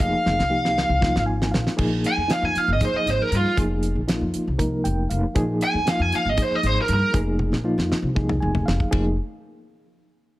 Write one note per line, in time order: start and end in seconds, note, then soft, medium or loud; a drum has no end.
0.00 0.12 F1 medium
0.00 0.42 F3 medium
0.00 0.42 A#3 medium
0.00 0.42 D#4 medium
0.00 0.43 G#4 medium
0.00 1.23 F5 medium
0.00 kick loud
0.00 closed hi-hat medium
0.26 0.37 F1 medium
0.26 snare medium
0.39 0.86 C2 medium
0.39 snare medium
0.50 0.93 F3 medium
0.50 0.93 A#3 medium
0.50 0.93 D#4 medium
0.50 0.94 G4 medium
0.65 snare medium
0.78 snare medium
0.89 1.13 C2 medium
1.00 1.75 F3 medium
1.00 1.76 A#3 medium
1.00 1.76 D#4 medium
1.00 1.78 F4 medium
1.00 kick loud
1.00 snare medium
1.16 1.51 G#1 medium
1.16 snare medium
1.26 1.50 G#5 medium
1.42 snare medium
1.52 1.65 A#1 medium
1.52 1.76 F5 medium
1.52 snare loud
1.67 snare medium
1.77 2.02 A#1 medium
1.77 2.20 F3 medium
1.77 2.20 A#3 medium
1.77 2.21 D#4 medium
1.77 2.21 G#4 medium
1.77 kick loud
1.77 crash loud
2.04 2.30 G#5 medium
2.04 snare soft
2.04 closed hi-hat medium
2.17 2.29 F2 medium
2.28 2.71 F3 medium
2.28 2.72 A#3 medium
2.28 2.72 D#4 medium
2.28 2.72 F4 medium
2.28 snare loud
2.28 closed hi-hat medium
2.32 2.45 F5 medium
2.42 2.54 F2 medium
2.42 2.58 G#5 medium
2.55 2.69 F5 medium
2.55 muted upright bass stroke soft
2.55 snare soft
2.55 closed hi-hat medium
2.68 2.80 G#1 medium
2.73 2.83 D#5 medium
2.81 3.56 F3 medium
2.81 3.56 A#3 medium
2.81 3.56 D#4 medium
2.81 3.57 G#4 medium
2.81 kick loud
2.81 snare soft
2.81 closed hi-hat medium
2.85 2.95 C5 medium
2.93 3.07 D#5 medium
2.93 muted upright bass stroke soft
3.06 3.18 G#1 medium
3.06 snare soft
3.06 closed hi-hat medium
3.10 3.22 C5 medium
3.22 3.33 A#4 medium
3.31 3.43 G2 medium
3.31 closed hi-hat medium
3.36 3.58 F4 medium
3.57 3.93 F1 medium
3.57 4.00 F3 medium
3.57 4.00 A#3 medium
3.57 4.00 D#4 medium
3.57 4.00 G#4 medium
3.57 kick loud
3.57 closed hi-hat medium
3.83 closed hi-hat medium
3.95 4.19 A#1 medium
4.07 4.51 F3 medium
4.07 4.51 A#3 medium
4.07 4.51 D#4 medium
4.07 4.51 F4 medium
4.07 snare loud
4.07 closed hi-hat medium
4.21 4.33 F2 medium
4.34 muted upright bass stroke soft
4.34 closed hi-hat medium
4.47 4.82 C2 medium
4.58 5.34 F3 medium
4.58 5.34 A#3 medium
4.58 5.34 D#4 medium
4.58 5.35 A#4 medium
4.58 kick loud
4.58 closed hi-hat medium
4.84 5.08 F1 medium
4.84 5.08 G5 medium
4.84 closed hi-hat medium
5.09 5.22 F1 medium
5.09 5.33 F5 medium
5.09 closed hi-hat medium
5.35 5.59 A#1 medium
5.35 5.78 F3 medium
5.35 5.78 A#3 medium
5.35 5.78 D#4 medium
5.35 5.79 G#4 loud
5.35 kick loud
5.35 closed hi-hat medium
5.61 5.87 G#5 medium
5.61 closed hi-hat medium
5.74 5.86 F2 medium
5.85 6.29 F3 medium
5.85 6.29 A#3 medium
5.85 6.29 D#4 medium
5.85 6.29 F4 medium
5.85 snare loud
5.85 closed hi-hat medium
5.89 6.02 F5 medium
6.00 6.11 F2 medium
6.00 6.13 G#5 medium
6.12 6.29 F5 medium
6.12 muted upright bass stroke soft
6.12 snare soft
6.12 closed hi-hat medium
6.25 6.37 G#1 medium
6.29 6.42 D#5 medium
6.37 7.12 F3 medium
6.37 7.12 A#3 medium
6.37 7.13 D#4 medium
6.37 7.13 G#4 medium
6.37 kick loud
6.37 closed hi-hat medium
6.42 6.55 C5 medium
6.51 muted upright bass stroke soft
6.55 6.67 D#5 medium
6.63 6.75 G#1 medium
6.63 6.77 C5 medium
6.63 closed hi-hat medium
6.82 6.91 A#4 medium
6.88 7.00 G2 loud
6.88 closed hi-hat medium
6.93 7.16 A#4 medium
7.13 7.49 F1 medium
7.13 7.56 F3 medium
7.13 7.57 A#3 medium
7.13 7.57 D#4 medium
7.13 7.57 G#4 medium
7.13 kick loud
7.13 closed hi-hat medium
7.39 high tom medium
7.52 7.76 A#1 medium
7.52 snare medium
7.64 8.07 F3 medium
7.64 8.07 A#3 medium
7.64 8.08 D#4 medium
7.64 8.08 F4 medium
7.78 7.90 F2 medium
7.78 snare medium
7.91 muted upright bass stroke soft
7.91 snare medium
8.02 8.38 C2 medium
8.15 8.90 F3 medium
8.15 8.90 A#3 medium
8.15 8.90 D#4 medium
8.15 8.90 G#4 medium
8.15 kick loud
8.29 mid tom medium
8.40 8.66 F1 medium
8.40 8.65 G#5 medium
8.55 floor tom medium
8.66 8.79 F1 medium
8.66 8.90 F5 medium
8.66 snare loud
8.80 kick medium
8.91 9.17 F1 medium
8.91 9.15 F3 medium
8.91 9.16 A#3 medium
8.91 9.15 D#4 medium
8.91 9.15 G#4 medium
8.91 kick loud
8.91 ride bell medium